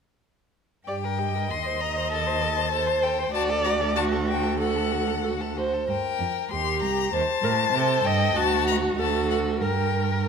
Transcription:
0.87 G2 G4 D5 G5
1.04 A#4
1.19 G4 D#5
1.35 A#4
1.51 D#2 D#5 C6
1.66 C5
1.81 D#5 A#5
1.96 C5
2.11 A4 A5
2.26 C5
2.42 A4
2.57 C5
2.72 A4 C5
2.87 C5
3.03 A4 G5
3.19 C5
3.33 D2 F#4 D5 A5
3.50 A4
3.64 F#4 A#5
3.81 A4
3.96 F#4 A5
4.12 A4
4.28 F#4 G5
4.44 A4
4.59 F#4 A4 F#5
4.76 A4
4.92 F#4
5.08 A4
5.23 F#4 A4
5.41 A4
5.56 F#4 C5
5.74 A4
5.88 G2 A#4 G5
6.19 F2
6.51 D#2 G4 C6
6.81 C2 A#5
7.12 D#2 C5 A5
7.42 A2 A#4
7.73 C3 A4 C5
8.04 G2 D#5 G5
8.35 D2 F#4 A5
8.67 A#5
8.97 D2 F#4 A4 A5
9.30 F#5
9.61 G2 A#4 G5

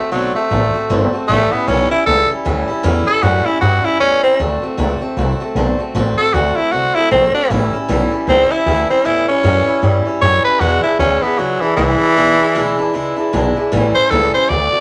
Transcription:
Already playing: A3 C4 F#4
0.11 B1 D3 F#3 A3 C4 F#4
0.35 A3 C4 F#4, muted upright bass stroke
0.50 A1 D3 A3 C4 F#4
0.73 A3 C4 F#4, muted upright bass stroke
0.89 G1 D3 A3 C4 F#4
1.13 A3 C4 F#4, muted upright bass stroke
1.28 A1 A2 E3 G3 A3 C#4 E4
1.51 G3 B3 C#4 E4, muted upright bass stroke
1.68 B1 A2 E3 G3 C#4 E4
1.90 G3 C#4 E4, muted upright bass stroke
2.06 C#2 E3 G3 C#4 E4 A4
2.29 G3 C#4 E4, muted upright bass stroke
2.45 D2 A2 E3 G3 C#4 E4
2.68 G3 C#4 E4, muted upright bass stroke
2.83 E2 A2 E3 G3 C#4 E4
3.06 G3 C#4 E4 A4, muted upright bass stroke
3.22 F#2 A2 E3 G3 C#4 E4 F#4
3.45 G3 C#4 E4, muted upright bass stroke
3.61 G2 E3 G3 C#4 E4 F#4
3.84 G3 C#4 E4, muted upright bass stroke
4.00 E2 A2 E3 G3 C#4 E4
4.23 G3 C4 C#4 E4, muted upright bass stroke
4.39 D2 D3 A3 C4 F#4
4.62 A3 C4 F#4, muted upright bass stroke
4.77 C#2 D3 A3 C4 F#4
5.01 A3 C4 F#4, muted upright bass stroke
5.17 C2 D3 A3 C4 F#4
5.40 A3 C4 F#4, muted upright bass stroke
5.55 B1 D3 A3 C4 F#4
5.79 A3 C4 F#4, muted upright bass stroke
5.94 A1 D3 A3 C4 F#4
6.18 A3 C4 F#4 A4, muted upright bass stroke
6.33 D2 D3 A3 C4 F#4
6.56 A3 C4 E4 F#4
6.72 C2 D3 A3 C4 F#4
6.95 A3 C4 E4 F#4, muted upright bass stroke
7.11 A#1 D3 A3 C4 F#4
7.34 A3 C4 D4 F#4, muted upright bass stroke
7.50 A1 A2 E3 G3 C#4 E4
7.73 G3 C#4 E4, muted upright bass stroke
7.88 B1 A2 E3 G3 C#4 E4
8.12 G3 C#4 E4, muted upright bass stroke
8.27 C#2 E3 G3 C4 C#4 E4
8.50 G3 C#4 E4, muted upright bass stroke
8.66 D2 A2 E3 G3 C#4 E4
8.89 G3 C4 C#4 E4, muted upright bass stroke
9.05 E2 A2 E3 G3 C#4 E4
9.27 G3 C#4 E4, muted upright bass stroke
9.43 F#2 A2 E3 G3 C#4 E4
9.66 G3 C#4 E4, muted upright bass stroke
9.82 G2 E3 G3 C#4 E4
10.05 G3 C#4 E4, muted upright bass stroke
10.21 F#2 A2 E3 G3 C#4 E4 C#5
10.44 G3 C#4 E4 B4
10.60 E2 B2 E3 G#3 D4 E4 F#4
10.83 E3 G#3 D4 E4, muted upright bass stroke
10.99 D2 E2 B2 E3 G#3 C#4 D4 E4
11.22 E3 G#3 B3 D4 E4, muted upright bass stroke
11.37 C#2 E3 F#3 G#3 D4 E4
11.61 E3 G#3 D4 E4, muted upright bass stroke
11.76 C2 E2 B2 E3 G#3 D4 E4
12.00 E3 G#3 D4 E4
12.16 B1 E2 B2 E3 G#3 D4 E4
12.39 E3 G#3 D4 E4, muted upright bass stroke
12.55 D2 E2 B2 E3 G#3 D4 E4
12.78 E3 G#3 D4 E4, muted upright bass stroke
12.93 C#2 E3 G#3 D4 E4
13.16 E3 G#3 D4 E4, muted upright bass stroke
13.32 B1 E2 B2 E3 G#3 D4 E4
13.56 E3 G#3 D4 E4, muted upright bass stroke
13.72 A1 A2 E3 G3 C#4 E4
13.95 G3 C#4 E4 C5, muted upright bass stroke
14.10 C#2 A2 E3 G3 C#4 E4 A4
14.34 G3 C#4 E4 C5, muted upright bass stroke
14.49 D2 D3 A3 C4 F#4 D5
14.72 A3 C4 F#4, muted upright bass stroke

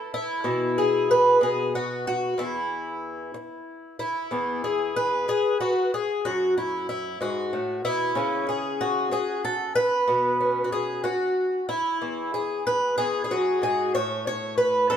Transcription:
Already playing: E4 A4
0.14 E4
0.44 B2 E3
0.78 G#4
1.11 B4
1.41 B2 G#4
1.75 F#4
2.07 F#4
2.38 E2 E4
3.34 muted twelve-string acoustic guitar stroke
3.99 E4
4.31 E2 B3
4.64 G#4
4.96 B4
5.28 G#4, muted twelve-string acoustic guitar stroke
5.60 F#4
5.94 G#4
6.25 F#2 F#4
6.58 E4
6.89 E4
7.21 G#2 F#4
7.53 A2
7.85 B2 E4
8.15 C#3 C#4
8.49 G#4
8.81 F#4
9.11 G#4, muted twelve-string acoustic guitar stroke
9.45 A4
9.75 B4
10.07 B2
10.40 C#4
10.64 F#4
10.72 G#4
11.04 F#4, muted twelve-string acoustic guitar stroke
11.69 E4
12.01 E2
12.34 G#4
12.67 B4
12.98 E2 G#4
13.24 G#4
13.31 F#2 F#4
13.62 G#2 G#4
13.94 A2 C#5
14.27 C#5
14.58 B4
14.90 F#2 A4

